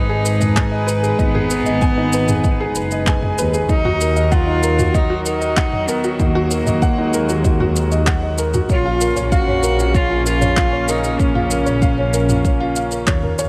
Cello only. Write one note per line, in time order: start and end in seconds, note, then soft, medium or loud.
0.00 0.88 D#4 loud
1.19 3.03 B3 loud
3.70 4.33 D#4 loud
4.31 4.96 F4 loud
4.94 5.26 D#4 loud
5.26 5.90 D#4 loud
5.89 6.21 B3 medium
6.20 8.07 A#3 medium
8.72 9.29 F4 loud
9.33 9.97 F#4 loud
9.96 10.26 F4 loud
10.27 10.91 F4 loud
10.89 11.21 D#4 loud
11.19 13.07 C#4 medium